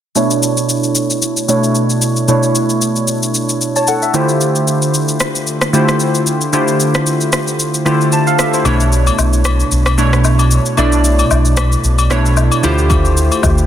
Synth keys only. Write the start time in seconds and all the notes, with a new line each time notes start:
0.15 B2 A3 D4 E4 C#5
1.48 B2 A3 D4 E4 C#5
2.28 B2 A3 D4 E4 C#5
3.76 C#5 A5
3.88 A4 F#5
4.03 E5
4.14 D3 A3 E4 F4 G4 C5
5.73 D3 A3 E4 F4 G4 C5
6.53 D3 A3 E4 F4 G4 C5
7.85 D3 A3 E4 F4 G4 C5
8.13 C5 A5
8.27 A4 F5
8.39 G4 E5
8.54 E4 C5
8.65 B2 A3 D4 E4 C#5
9.98 B2 A3 D4 E4 C#5
10.77 B2 A3 D4 E4 D5
12.10 B2 A3 D4 E4 C#5
12.63 D3 A3 E4 F4 G4 C5